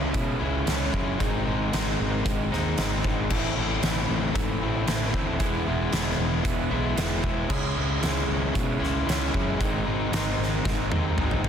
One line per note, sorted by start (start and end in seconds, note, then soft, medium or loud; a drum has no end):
0.00 0.11 C#2 loud
0.00 0.13 C#3 medium
0.00 0.13 G#3 medium
0.00 0.14 C#4 medium
0.00 0.15 E4 medium
0.14 0.36 B2 loud
0.14 0.66 C#3 loud
0.14 0.42 G#3 medium
0.14 0.41 C#4 loud
0.14 0.40 E4 loud
0.14 kick loud
0.14 closed hi-hat medium
0.41 0.63 C#2 medium
0.41 0.67 G#3 medium
0.41 0.67 C#4 medium
0.41 0.68 E4 medium
0.67 0.89 C#2 medium
0.67 1.18 C#3 medium
0.67 0.94 G#3 medium
0.67 0.93 C#4 medium
0.67 0.92 E4 medium
0.67 snare loud
0.67 closed hi-hat medium
0.93 1.15 F#2 loud
0.93 1.19 G#3 medium
0.93 1.18 C#4 medium
0.93 1.18 E4 medium
0.93 kick medium
1.19 1.42 G#1 medium
1.19 1.72 G#2 medium
1.19 1.71 D#3 medium
1.19 1.46 G#3 loud
1.19 1.46 C4 loud
1.19 1.44 D#4 medium
1.19 kick loud
1.19 closed hi-hat medium
1.45 1.69 G#1 medium
1.45 1.72 G#3 medium
1.45 1.74 C4 medium
1.45 1.73 D#4 medium
1.72 1.95 G#1 medium
1.72 2.24 D#3 medium
1.72 2.24 G#3 medium
1.72 2.25 C4 medium
1.72 2.25 D#4 medium
1.72 snare loud
1.72 closed hi-hat medium
2.00 2.21 G#1 medium
2.24 2.47 G#1 medium
2.24 2.77 G#2 medium
2.24 2.75 D#3 medium
2.24 2.51 G#3 medium
2.24 2.51 C4 loud
2.24 2.50 D#4 medium
2.24 kick loud
2.24 closed hi-hat medium
2.51 2.74 D#2 medium
2.51 2.77 G#3 medium
2.51 2.77 C4 medium
2.51 2.78 D#4 medium
2.51 snare soft
2.77 3.00 G#1 medium
2.77 3.29 G#2 medium
2.77 3.28 D#3 medium
2.77 3.05 G#3 medium
2.77 3.03 C4 medium
2.77 3.02 D#4 medium
2.77 snare loud
2.77 closed hi-hat medium
3.04 3.26 G#1 loud
3.04 3.30 G#3 medium
3.04 3.29 C4 medium
3.04 3.28 D#4 medium
3.04 kick medium
3.30 3.52 A1 loud
3.30 3.83 A2 medium
3.30 3.81 E3 loud
3.30 3.57 A3 medium
3.30 3.56 C4 loud
3.30 3.56 E4 loud
3.30 kick loud
3.30 crash loud
3.56 3.79 A1 medium
3.56 3.81 A3 medium
3.56 3.82 C4 medium
3.56 3.83 E4 medium
3.82 4.04 A1 medium
3.82 4.34 E3 medium
3.82 4.33 A3 medium
3.82 4.34 C4 medium
3.82 4.35 E4 medium
3.82 snare loud
3.82 closed hi-hat medium
4.09 4.31 A1 loud
4.33 4.57 G#2 medium
4.33 4.87 A2 medium
4.33 4.86 E3 medium
4.33 4.61 A3 loud
4.33 4.60 C4 medium
4.33 4.59 E4 loud
4.33 kick loud
4.33 closed hi-hat medium
4.60 4.83 A1 medium
4.60 4.86 A3 medium
4.60 4.87 C4 medium
4.60 4.88 E4 medium
4.86 5.09 A1 medium
4.86 5.38 A2 medium
4.86 5.39 E3 medium
4.86 5.14 A3 medium
4.86 5.14 C4 medium
4.86 5.13 E4 medium
4.86 snare loud
4.86 closed hi-hat medium
5.14 5.36 D2 loud
5.14 5.39 A3 medium
5.14 5.39 C4 medium
5.14 5.40 E4 medium
5.14 kick medium
5.39 5.62 E1 loud
5.39 5.91 E3 medium
5.39 5.67 G#3 medium
5.39 5.65 B3 loud
5.39 5.65 E4 loud
5.39 kick loud
5.39 closed hi-hat medium
5.66 5.88 E1 medium
5.66 5.92 G#3 soft
5.66 5.91 B3 medium
5.66 5.93 E4 medium
5.91 6.14 E1 loud
5.91 6.42 E3 medium
5.91 6.44 G#3 medium
5.91 6.44 B3 medium
5.91 6.44 E4 medium
5.91 snare loud
5.91 closed hi-hat medium
6.18 6.40 E1 medium
6.43 6.67 E1 medium
6.43 6.95 E3 loud
6.43 6.72 G#3 medium
6.43 6.71 B3 loud
6.43 6.69 E4 loud
6.43 kick loud
6.43 closed hi-hat medium
6.70 6.93 B1 medium
6.70 6.97 G#3 medium
6.70 6.96 B3 medium
6.70 6.98 E4 medium
6.96 7.19 E1 medium
6.96 7.48 E3 medium
6.96 7.24 G#3 medium
6.96 7.22 B3 medium
6.96 7.21 E4 medium
6.96 snare loud
6.96 closed hi-hat medium
7.22 7.45 E1 loud
7.22 7.49 G#3 medium
7.22 7.48 B3 medium
7.22 7.48 E4 medium
7.22 kick medium
7.48 7.72 C#2 medium
7.48 8.01 C#3 medium
7.48 7.77 G#3 loud
7.48 7.76 C#4 loud
7.48 7.74 E4 loud
7.48 kick loud
7.48 crash loud
7.75 7.98 C#2 medium
7.75 8.03 G#3 medium
7.75 8.02 C#4 medium
7.75 8.03 E4 medium
8.02 8.24 C#2 loud
8.02 8.52 C#3 medium
8.02 8.53 G#3 medium
8.02 8.55 C#4 medium
8.02 8.55 E4 loud
8.02 snare loud
8.02 closed hi-hat medium
8.28 8.50 C#2 loud
8.54 8.77 B2 medium
8.54 9.05 C#3 medium
8.54 8.82 G#3 loud
8.54 8.81 C#4 loud
8.54 8.79 E4 loud
8.54 kick loud
8.54 closed hi-hat medium
8.80 9.03 C#2 medium
8.80 9.06 G#3 medium
8.80 9.07 C#4 medium
8.80 9.07 E4 medium
8.80 snare soft
9.06 9.29 C#2 medium
9.06 9.58 C#3 medium
9.06 9.34 G#3 medium
9.06 9.33 C#4 medium
9.06 9.32 E4 medium
9.06 snare loud
9.06 closed hi-hat medium
9.33 9.56 F#2 medium
9.33 9.59 G#3 medium
9.33 9.58 C#4 medium
9.33 9.58 E4 medium
9.33 kick medium
9.60 9.82 G#1 loud
9.60 10.12 G#2 medium
9.60 10.10 D#3 medium
9.60 9.87 G#3 loud
9.60 9.86 C4 loud
9.60 9.85 D#4 loud
9.60 kick loud
9.60 closed hi-hat medium
9.86 10.08 G#1 medium
9.86 10.11 G#3 medium
9.86 10.12 C4 medium
9.86 10.12 D#4 medium
10.12 10.34 G#1 medium
10.12 10.64 D#3 medium
10.12 10.64 G#3 medium
10.12 10.64 C4 medium
10.12 10.65 D#4 medium
10.12 snare loud
10.12 closed hi-hat medium
10.38 10.60 G#1 medium
10.64 10.87 G#1 medium
10.64 11.17 G#2 loud
10.64 11.15 D#3 medium
10.64 10.90 G#3 loud
10.64 10.89 C4 loud
10.64 10.88 D#4 loud
10.64 kick loud
10.64 snare medium
10.89 11.12 D#2 medium
10.89 11.16 G#3 medium
10.89 11.16 C4 medium
10.89 11.18 D#4 medium
10.89 high tom medium
11.16 11.39 G#1 medium
11.16 11.49 G#2 medium
11.16 11.49 D#3 medium
11.16 11.44 G#3 medium
11.16 11.42 C4 medium
11.16 11.41 D#4 medium
11.16 mid tom medium
11.31 mid tom medium
11.42 11.49 G#1 loud
11.42 11.49 G#3 medium
11.42 11.49 C4 medium
11.42 11.49 D#4 medium
11.42 floor tom loud